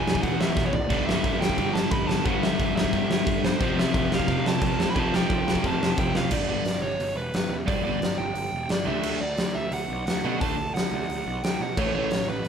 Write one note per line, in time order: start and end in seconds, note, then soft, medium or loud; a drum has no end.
0.00 0.72 E2 loud
0.00 0.74 B2 loud
0.00 0.75 E3 loud
0.00 0.22 G#5 medium
0.07 0.19 E1 loud
0.07 0.74 E2 medium
0.07 0.73 B2 medium
0.07 0.73 E3 medium
0.07 snare loud
0.15 kick medium
0.23 0.35 E1 medium
0.23 0.39 F#5 loud
0.23 kick loud
0.23 crash medium
0.40 0.51 E1 medium
0.40 0.66 E5 loud
0.40 snare loud
0.56 0.68 E1 medium
0.56 kick loud
0.56 snare medium
0.66 0.73 C#5 medium
0.73 0.85 E1 medium
0.73 1.06 D5 loud
0.73 floor tom loud
0.90 1.02 G1 loud
0.90 1.56 G2 medium
0.90 1.57 D3 loud
0.90 1.59 G3 medium
0.90 kick loud
0.90 splash medium
0.90 crash medium
1.06 1.19 G1 loud
1.06 1.38 E5 medium
1.06 snare loud
1.24 1.36 G1 loud
1.24 kick loud
1.24 crash medium
1.39 1.52 G1 medium
1.39 1.74 G5 medium
1.39 snare loud
1.50 kick medium
1.57 1.69 G1 medium
1.57 2.22 G2 medium
1.57 2.24 D3 medium
1.57 2.25 G3 medium
1.57 kick loud
1.57 crash medium
1.74 1.86 G1 medium
1.74 1.91 A5 medium
1.74 snare loud
1.91 2.03 G1 medium
1.91 2.07 B5 medium
1.91 kick loud
1.91 crash medium
2.08 2.20 G1 medium
2.08 2.24 A5 loud
2.08 snare loud
2.24 2.37 G1 loud
2.24 2.91 G2 medium
2.24 2.92 D3 loud
2.24 2.92 G3 medium
2.24 2.43 F#5 loud
2.24 kick loud
2.24 crash medium
2.42 2.53 G1 medium
2.42 2.75 E5 loud
2.42 snare loud
2.59 2.71 G1 loud
2.59 kick loud
2.59 crash medium
2.76 2.88 G1 loud
2.76 3.45 E5 medium
2.76 snare loud
2.84 kick medium
2.92 3.05 G1 loud
2.92 3.59 G2 medium
2.92 3.60 D3 medium
2.92 3.60 G3 medium
2.92 kick medium
2.92 crash medium
3.10 3.21 G1 medium
3.10 snare loud
3.27 3.38 G1 medium
3.27 kick loud
3.27 crash medium
3.44 3.55 G1 loud
3.44 3.78 C5 loud
3.44 snare loud
3.59 3.72 F1 loud
3.59 4.27 F2 loud
3.59 4.27 C3 medium
3.59 4.30 F3 loud
3.59 kick loud
3.59 crash medium
3.76 3.88 F1 loud
3.76 4.13 E5 loud
3.76 snare loud
3.94 4.06 F1 loud
3.94 kick loud
3.94 crash medium
4.10 4.22 F1 medium
4.10 4.47 F5 medium
4.10 snare loud
4.20 kick medium
4.27 4.39 F1 medium
4.27 4.94 F2 medium
4.27 4.95 C3 medium
4.27 4.96 F3 medium
4.27 kick loud
4.27 crash medium
4.44 4.56 F1 medium
4.44 4.90 A5 loud
4.44 snare loud
4.61 4.73 F1 medium
4.61 kick loud
4.61 crash medium
4.77 4.89 F1 medium
4.77 snare loud
4.90 4.99 B5 loud
4.95 5.07 F1 medium
4.95 5.60 F2 medium
4.95 5.62 C3 medium
4.95 5.62 F3 loud
4.95 kick loud
4.95 crash medium
4.99 5.14 A5 loud
5.11 5.24 F1 loud
5.11 snare loud
5.16 5.66 G5 medium
5.30 5.41 F1 loud
5.30 kick loud
5.30 crash medium
5.47 5.59 F1 medium
5.47 snare loud
5.55 kick medium
5.62 5.75 F1 medium
5.62 6.30 F2 medium
5.62 6.30 C3 medium
5.62 6.31 F3 medium
5.62 kick loud
5.62 crash medium
5.67 5.97 A5 medium
5.81 5.93 F1 medium
5.81 snare loud
5.97 6.09 F1 medium
5.97 6.16 G5 loud
5.97 kick loud
5.97 crash medium
6.14 6.26 F1 medium
6.14 6.32 F5 medium
6.14 snare loud
6.30 6.44 G1 medium
6.30 6.44 G2 medium
6.30 6.45 D3 medium
6.30 6.45 G3 medium
6.30 6.48 D5 medium
6.30 kick loud
6.30 crash loud
6.48 6.62 G1 medium
6.48 6.62 G2 medium
6.48 6.62 D3 medium
6.48 6.63 G3 loud
6.48 6.81 D5 medium
6.65 6.79 G1 medium
6.65 snare medium
6.65 open hi-hat medium
6.82 6.96 G1 medium
6.82 7.17 C#5 medium
7.00 7.13 G1 medium
7.00 open hi-hat medium
7.15 7.29 E1 medium
7.15 7.48 B4 medium
7.33 7.46 G1 medium
7.33 snare loud
7.33 open hi-hat medium
7.50 7.63 E2 medium
7.50 7.55 B4 medium
7.67 7.81 G1 loud
7.67 7.81 G2 medium
7.67 7.81 D3 loud
7.67 7.82 G3 medium
7.67 7.83 D5 medium
7.67 kick loud
7.67 open hi-hat medium
7.84 7.98 G1 medium
7.84 7.99 G2 medium
7.84 7.99 D3 medium
7.84 8.00 G3 loud
7.84 8.16 D5 medium
8.01 8.15 G1 medium
8.01 snare loud
8.01 open hi-hat soft
8.18 8.32 G1 medium
8.18 8.71 G5 loud
8.35 8.49 G1 medium
8.35 open hi-hat medium
8.52 8.66 E1 medium
8.69 8.88 G1 medium
8.69 8.88 D5 medium
8.69 snare loud
8.69 open hi-hat medium
8.86 9.00 D2 loud
8.86 9.00 D3 loud
8.86 9.00 A3 medium
8.86 9.01 D4 loud
8.86 9.22 E5 loud
9.03 9.17 D2 medium
9.03 9.17 D3 medium
9.03 9.18 A3 loud
9.03 9.18 D4 loud
9.03 crash loud
9.20 9.34 D2 medium
9.20 9.56 D5 loud
9.37 9.51 D2 loud
9.37 snare loud
9.37 open hi-hat medium
9.55 9.68 D2 medium
9.55 9.73 E5 medium
9.72 9.85 D2 medium
9.72 10.06 F#5 loud
9.72 open hi-hat medium
9.89 10.02 B1 medium
10.07 10.20 D2 medium
10.07 10.41 F#5 medium
10.07 snare loud
10.07 open hi-hat medium
10.24 10.37 B2 loud
10.24 10.38 D3 loud
10.24 10.37 A3 loud
10.24 10.38 D4 loud
10.41 10.54 D2 medium
10.41 10.54 D3 medium
10.41 10.55 A3 medium
10.41 10.55 D4 loud
10.41 10.74 A5 loud
10.41 kick loud
10.41 open hi-hat medium
10.58 10.71 D2 medium
10.74 10.88 D2 medium
10.74 11.44 F#5 medium
10.74 snare loud
10.74 open hi-hat medium
10.92 11.05 D2 medium
11.09 11.22 D2 medium
11.09 open hi-hat medium
11.26 11.39 B1 medium
11.43 11.56 D2 medium
11.43 11.62 G5 loud
11.43 snare loud
11.43 open hi-hat medium
11.60 11.73 B2 medium
11.60 11.78 F#5 medium
11.77 11.90 A1 medium
11.77 11.90 A2 medium
11.77 11.90 E3 loud
11.77 11.91 A3 loud
11.77 11.94 C#5 medium
11.77 kick loud
11.77 crash medium
11.94 12.07 A1 medium
11.94 12.07 A2 medium
11.94 12.07 E3 medium
11.94 12.08 A3 loud
11.94 12.29 C#5 medium
12.10 12.23 A1 medium
12.10 snare loud
12.10 open hi-hat medium
12.28 12.41 A1 medium
12.28 12.48 B4 medium
12.45 12.48 A1 medium
12.45 open hi-hat medium